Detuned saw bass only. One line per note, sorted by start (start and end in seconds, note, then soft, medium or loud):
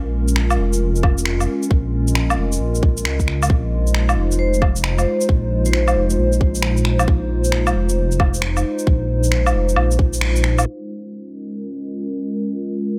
0.00 0.57 A#1 medium
0.58 1.47 F1 loud
1.71 2.37 A#1 loud
2.38 2.59 F1 loud
2.60 3.06 A#1 medium
3.05 3.49 C#2 loud
3.50 4.16 A#1 loud
4.17 5.05 F1 loud
5.29 5.95 A#1 medium
5.96 6.17 F1 loud
6.18 7.07 A#1 medium
7.08 7.74 A#1 loud
7.75 8.63 F1 loud
8.87 9.53 A#1 medium
9.54 9.75 F1 loud
9.76 10.20 A#1 medium
10.21 10.65 A#1 loud